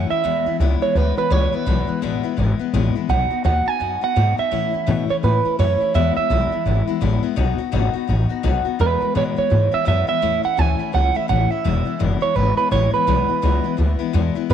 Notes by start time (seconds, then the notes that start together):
Already playing: A2 E3 A3 C#4 F#5
0.10 A3 C#4 E4 E5, muted upright bass stroke
0.24 E2 B2 E3 G#3 B3 E4
0.46 E3 G#3 B3 E4, muted upright bass stroke
0.60 C#2 E2 B2 E3 G#3 B3 E4
0.81 E3 G#3 B3 E4 C#5, muted upright bass stroke
0.95 D2 E3 G#3 B3 E4 B4
1.17 E3 G#3 B3 E4 B4, muted upright bass stroke
1.30 C#2 E2 B2 E3 G#3 B3 E4 C#5
1.52 E3 G#3 B3 E4 B4, muted upright bass stroke
1.66 B1 E2 B2 E3 G#3 B3 E4
1.87 E3 G#3 B3 E4, muted upright bass stroke
2.02 A1 E2 B2 E3 G#3 B3 E4
2.23 E3 G#3 B3 E4, muted upright bass stroke
2.37 G#1 E3 G#3 B3 E4
2.59 E3 G#3 B3 E4, muted upright bass stroke
2.73 A1 E2 B2 E3 G#3 B3 E4
2.95 E3 G#3 B3 E4, muted upright bass stroke
3.09 B1 B2 F#3 B3 D#4 F#4 F#5
3.30 B3 D#4 F#4, muted upright bass stroke
3.44 D#2 B2 F#3 B3 D#4 F#4 F#5
3.66 B3 D#4 F#4 G#5, muted upright bass stroke
3.80 F#2 F#3 B3 D#4 F#4
4.01 B3 D#4 F#4 F#5, muted upright bass stroke
4.16 G#2 B2 F#3 B3 D#4 F#4
4.37 B3 D#4 F#4 E5, muted upright bass stroke
4.51 A2 E3 A3 C#4 E4
4.73 A3 C#4 E4, muted upright bass stroke
4.87 A2 B2 E3 A3 C#4 E4
5.09 A3 C#4 E4 C#5, muted upright bass stroke
5.23 A2 E3 A3 C#4 E4 B4
5.45 A3 C#4 E4, muted upright bass stroke
5.59 F#2 A2 E3 A3 C#4 E4 C#5
5.80 A3 C#4 E4, muted upright bass stroke
5.94 E2 B2 E3 G#3 B3 E4 E5
6.16 E3 G#3 B3 E4 E5, muted upright bass stroke
6.30 B1 E2 B2 E3 G#3 B3 E4
6.51 E3 G#3 B3 E4, muted upright bass stroke
6.65 G#1 E3 G#3 B3 E4
6.87 E3 G#3 B3 E4, muted upright bass stroke
7.01 A1 E2 B2 E3 G#3 B3 E4
7.23 E3 G#3 B3 E4, muted upright bass stroke
7.36 B1 B2 F#3 B3 D#4 F#4
7.58 B3 D#4 F#4, muted upright bass stroke
7.72 G#1 B2 F#3 B3 D#4 F#4
7.93 B3 D#4 F#4, muted upright bass stroke
8.07 A1 F#3 B3 D#4 F#4
8.29 B3 D#4 F#4, muted upright bass stroke
8.43 B1 B2 F#3 B3 D#4 F#4
8.65 B3 D#4 F#4, muted upright bass stroke
8.79 E2 B2 E3 G#3 B3 E4 B4
9.01 E3 G#3 B3 E4, muted upright bass stroke
9.15 E2 B2 E3 G#3 B3 E4 C#5
9.36 E3 G#3 B3 E4 C#5, muted upright bass stroke
9.50 G#2 E3 G#3 B3 E4
9.71 E3 G#3 B3 E4 E5, muted upright bass stroke
9.85 E2 F#2 B2 E3 G#3 B3 E4 E5
10.07 E3 G#3 B3 E4 E5, muted upright bass stroke
10.22 E2 A2 E3 A3 C#4 E4
10.43 A3 C#4 E4 F#5, muted upright bass stroke
10.57 D2 A2 E3 A3 C#4 E4 G#5
10.79 A3 C#4 E4, muted upright bass stroke
10.92 C#2 E3 A3 C#4 E4 F#5
11.14 A3 C#4 E4 E5, muted upright bass stroke
11.28 A1 A2 E3 A3 C#4 E4 F#5
11.50 A3 C#4 E4 E5, muted upright bass stroke
11.64 E1 E2 B2 E3 G#3 B3 E4
11.85 E3 G#3 B3 E4, muted upright bass stroke
11.99 F#1 E2 B2 E3 G#3 B3 E4
12.20 E3 G#3 B3 E4 C#5, muted upright bass stroke
12.35 G#1 E3 G#3 B3 E4 B4
12.57 E3 G#3 B3 E4 B4, muted upright bass stroke
12.71 A1 E2 B2 E3 G#3 B3 E4 C#5
12.93 E3 G#3 B3 E4 B4, muted upright bass stroke
13.07 B1 E2 B2 E3 G#3 B3 E4
13.28 E3 G#3 B3 E4, muted upright bass stroke
13.42 C#2 E2 B2 E3 G#3 B3 E4
13.64 E3 G#3 B3 E4, muted upright bass stroke
13.77 D2 E3 G#3 B3 E4
13.99 E3 G#3 B3 E4, muted upright bass stroke
14.13 E2 B2 E3 G#3 B3 E4
14.35 E3 G#3 B3 E4, muted upright bass stroke
14.49 A2 E3 A3 C#4 E4 B4